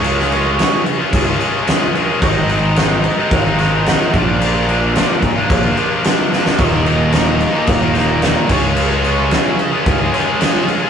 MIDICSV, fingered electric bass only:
0, 0, Header, 1, 2, 480
1, 0, Start_track
1, 0, Tempo, 545951
1, 31, Time_signature, 4, 2, 24, 8
1, 9582, End_track
2, 0, Start_track
2, 0, Title_t, "Fingered electric bass"
2, 0, Program_c, 0, 33
2, 0, Note_on_c, 0, 37, 93
2, 537, Note_off_c, 0, 37, 0
2, 993, Note_on_c, 0, 37, 95
2, 1179, Note_off_c, 0, 37, 0
2, 1955, Note_on_c, 0, 32, 99
2, 2699, Note_off_c, 0, 32, 0
2, 2909, Note_on_c, 0, 32, 103
2, 3469, Note_off_c, 0, 32, 0
2, 3639, Note_on_c, 0, 34, 100
2, 4381, Note_off_c, 0, 34, 0
2, 4835, Note_on_c, 0, 34, 95
2, 5020, Note_off_c, 0, 34, 0
2, 5794, Note_on_c, 0, 27, 97
2, 6537, Note_off_c, 0, 27, 0
2, 6754, Note_on_c, 0, 27, 92
2, 7311, Note_off_c, 0, 27, 0
2, 7470, Note_on_c, 0, 37, 92
2, 8214, Note_off_c, 0, 37, 0
2, 8668, Note_on_c, 0, 37, 91
2, 8855, Note_off_c, 0, 37, 0
2, 9582, End_track
0, 0, End_of_file